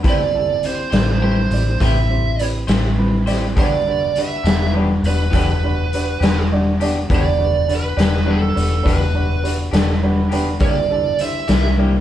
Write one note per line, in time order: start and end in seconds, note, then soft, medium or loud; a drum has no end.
0.03 0.89 A1 loud
0.03 0.22 A3 medium
0.03 0.27 C4 medium
0.03 0.22 E4 medium
0.03 0.27 E4 medium
0.03 0.22 G4 medium
0.03 0.27 G4 medium
0.03 0.27 B4 medium
0.03 0.23 C5 medium
0.03 kick loud
0.03 closed hi-hat medium
0.09 0.65 D5 medium
0.34 0.56 C4 soft
0.34 0.56 E4 soft
0.34 0.57 G4 soft
0.34 0.56 A4 medium
0.63 0.86 C4 medium
0.63 0.86 E4 soft
0.63 0.86 G4 soft
0.63 1.19 C5 medium
0.63 0.86 D5 medium
0.63 closed hi-hat medium
0.90 1.47 A1 medium
0.90 1.15 C4 soft
0.90 1.10 E4 soft
0.90 1.15 E4 soft
0.90 1.09 G4 soft
0.90 1.15 G4 soft
0.90 1.09 C5 medium
0.90 1.15 D5 medium
0.90 snare loud
0.90 closed hi-hat medium
1.20 1.39 A3 medium
1.20 1.45 C4 soft
1.20 1.39 E4 medium
1.20 1.45 E4 soft
1.20 1.40 G4 medium
1.20 1.45 G4 soft
1.20 1.45 B4 medium
1.20 1.83 C5 medium
1.20 1.40 C5 medium
1.51 1.78 A1 medium
1.51 1.74 C4 soft
1.51 1.74 E4 soft
1.51 1.75 G4 soft
1.51 1.75 D5 medium
1.51 closed hi-hat medium
1.80 2.65 A1 medium
1.80 1.98 A3 medium
1.80 2.04 C4 medium
1.80 1.99 E4 medium
1.80 2.04 E4 soft
1.80 1.99 G4 medium
1.80 2.04 G4 medium
1.80 2.04 B4 medium
1.80 1.99 C5 medium
1.80 2.43 E5 medium
1.80 kick medium
1.80 closed hi-hat medium
2.10 2.32 C4 medium
2.10 2.32 E4 medium
2.10 2.32 G4 soft
2.10 2.32 C5 medium
2.39 2.62 C4 medium
2.39 2.62 E4 soft
2.39 2.63 G4 soft
2.39 2.62 B4 medium
2.39 closed hi-hat medium
2.67 3.57 A1 medium
2.67 2.91 C4 medium
2.67 2.87 E4 soft
2.67 2.92 E4 medium
2.67 2.86 G4 soft
2.67 2.92 G4 medium
2.67 2.86 C5 medium
2.67 2.92 C5 medium
2.67 snare loud
2.67 closed hi-hat medium
2.98 3.20 C4 medium
2.98 3.21 E4 medium
2.98 3.20 G4 medium
2.98 3.20 B4 medium
3.26 3.50 C4 medium
3.26 3.45 E4 soft
3.26 3.50 E4 medium
3.26 3.45 G4 soft
3.26 3.50 G4 medium
3.26 3.44 C5 medium
3.26 3.50 D5 medium
3.26 snare soft
3.26 closed hi-hat medium
3.56 4.41 E1 loud
3.56 3.74 E3 medium
3.56 3.74 B3 medium
3.56 3.74 D4 medium
3.56 3.79 D4 medium
3.56 3.79 F#4 medium
3.56 3.75 G4 medium
3.56 3.79 G4 medium
3.56 3.79 B4 medium
3.56 4.19 D5 medium
3.56 kick loud
3.56 closed hi-hat medium
3.87 4.09 D4 medium
3.87 4.09 F#4 soft
3.87 4.09 G4 soft
3.87 4.09 B4 medium
4.16 4.39 D4 soft
4.16 4.39 F#4 soft
4.16 4.39 G4 soft
4.16 4.39 B4 medium
4.16 4.72 E5 loud
4.16 closed hi-hat medium
4.43 4.99 E1 medium
4.43 4.63 B3 soft
4.43 4.62 D4 soft
4.43 4.68 D4 soft
4.43 4.62 G4 soft
4.43 snare loud
4.43 closed hi-hat medium
4.47 4.68 F#4 soft
4.47 4.68 G4 soft
4.47 4.69 B4 medium
4.72 4.91 E3 medium
4.72 4.91 B3 medium
4.72 4.91 D4 medium
4.72 4.97 D4 soft
4.72 4.97 F#4 soft
4.72 4.92 G4 medium
4.72 4.97 G4 soft
4.72 4.97 B4 medium
5.03 5.30 E1 medium
5.03 5.27 D4 medium
5.03 5.27 F#4 soft
5.03 5.27 G4 soft
5.03 5.27 B4 medium
5.03 5.35 B4 medium
5.03 closed hi-hat medium
5.30 6.17 E1 medium
5.30 5.49 E3 medium
5.30 5.49 B3 medium
5.30 5.50 D4 medium
5.30 5.56 D4 medium
5.30 5.50 G4 medium
5.30 kick medium
5.30 closed hi-hat medium
5.34 5.56 F#4 medium
5.34 5.56 G4 medium
5.34 5.56 A4 medium
5.34 6.48 B4 medium
5.64 5.85 D4 medium
5.64 5.85 F#4 soft
5.64 5.85 G4 soft
5.64 5.85 B4 medium
5.93 6.15 D4 medium
5.93 6.15 F#4 medium
5.93 6.15 G4 soft
5.93 6.15 B4 medium
5.93 closed hi-hat medium
6.20 7.05 E1 medium
6.20 6.39 B3 soft
6.20 6.39 D4 soft
6.20 6.43 D4 medium
6.20 6.43 F#4 medium
6.20 6.38 G4 medium
6.20 6.43 G4 medium
6.20 6.43 B4 medium
6.20 snare loud
6.20 closed hi-hat medium
6.52 6.73 D4 medium
6.52 6.73 F#4 medium
6.52 6.73 G4 medium
6.52 6.73 D5 medium
6.80 6.98 B3 soft
6.80 6.98 D4 medium
6.80 7.02 D4 medium
6.80 7.02 F#4 medium
6.80 6.97 G4 medium
6.80 7.03 G4 medium
6.80 7.03 D5 medium
6.80 closed hi-hat medium
7.09 7.93 E1 loud
7.09 7.26 E3 medium
7.09 7.27 B3 medium
7.09 7.27 D4 medium
7.09 7.32 D4 medium
7.09 7.32 F#4 medium
7.09 7.27 G4 medium
7.09 7.32 G4 medium
7.09 7.32 B4 medium
7.09 kick medium
7.09 closed hi-hat medium
7.15 7.72 D5 loud
7.38 7.60 D4 soft
7.38 7.60 F#4 soft
7.38 7.60 G4 soft
7.38 7.60 B4 medium
7.68 7.90 D4 medium
7.68 7.90 F#4 soft
7.68 7.90 G4 soft
7.68 7.90 B4 medium
7.68 closed hi-hat medium
7.75 8.31 B4 medium
7.97 8.51 E1 medium
7.97 8.15 B3 soft
7.97 8.19 D4 soft
7.97 8.15 D4 soft
7.97 8.19 F#4 soft
7.97 8.14 G4 medium
7.97 8.19 G4 soft
7.97 8.19 D5 medium
7.97 snare medium
7.97 closed hi-hat medium
8.26 8.44 E3 medium
8.26 8.44 B3 medium
8.26 8.48 D4 soft
8.26 8.44 D4 medium
8.26 8.48 F#4 soft
8.26 8.48 G4 soft
8.26 8.45 G4 medium
8.26 8.48 B4 medium
8.30 8.88 A4 medium
8.55 8.83 E1 medium
8.55 8.77 D4 soft
8.55 8.77 F#4 soft
8.55 8.77 G4 soft
8.55 8.77 B4 soft
8.55 closed hi-hat medium
8.83 9.69 E1 medium
8.83 9.02 E3 medium
8.83 9.02 B3 medium
8.83 9.06 D4 medium
8.83 9.02 D4 medium
8.83 9.06 F#4 soft
8.83 9.06 G4 soft
8.83 9.03 G4 medium
8.83 9.06 B4 medium
8.83 kick medium
8.83 closed hi-hat medium
8.88 9.48 B4 medium
9.14 9.36 D4 soft
9.14 9.36 F#4 medium
9.14 9.36 G4 soft
9.14 9.36 B4 medium
9.43 9.65 D4 soft
9.43 9.65 F#4 soft
9.43 9.65 G4 soft
9.43 9.65 B4 medium
9.43 closed hi-hat medium
9.71 10.61 E1 medium
9.71 9.90 B3 soft
9.71 9.90 D4 soft
9.71 9.94 D4 medium
9.71 9.95 F#4 medium
9.71 9.89 G4 medium
9.71 9.95 G4 medium
9.71 9.94 A4 medium
9.71 snare medium
9.71 closed hi-hat medium
10.03 10.24 D4 medium
10.03 10.24 F#4 medium
10.03 10.24 G4 medium
10.03 10.24 B4 medium
10.03 10.30 B5 medium
10.29 10.49 B3 soft
10.29 10.49 D4 soft
10.29 10.54 D4 medium
10.29 10.54 F#4 medium
10.29 10.48 G4 medium
10.29 10.54 G4 medium
10.29 10.54 B4 medium
10.29 10.59 G5 medium
10.29 closed hi-hat medium
10.59 11.44 C2 loud
10.59 10.77 C3 medium
10.59 10.78 A#3 medium
10.59 10.82 D4 medium
10.59 10.82 E4 medium
10.59 10.78 E4 medium
10.59 10.83 G4 medium
10.59 10.78 G4 medium
10.59 10.83 A#4 medium
10.59 11.22 D5 medium
10.59 kick loud
10.59 closed hi-hat medium
10.90 11.12 D4 soft
10.90 11.12 E4 soft
10.90 11.12 G4 soft
10.90 11.12 A4 medium
11.19 11.42 D4 soft
11.19 11.42 E4 soft
11.19 11.42 G4 soft
11.19 11.42 C5 medium
11.19 11.74 E5 loud
11.19 closed hi-hat medium
11.48 12.01 C2 medium
11.48 11.66 A#3 soft
11.48 11.71 D4 soft
11.48 11.66 E4 soft
11.48 11.71 E4 soft
11.48 11.65 G4 soft
11.48 11.71 G4 soft
11.48 11.71 A#4 medium
11.48 snare medium
11.48 closed hi-hat medium
11.78 11.95 C3 soft
11.78 11.95 A#3 medium
11.78 12.00 D4 soft
11.78 12.00 E4 soft
11.78 11.96 E4 medium
11.78 12.00 G4 soft
11.78 11.96 G4 medium
11.78 12.00 A#4 soft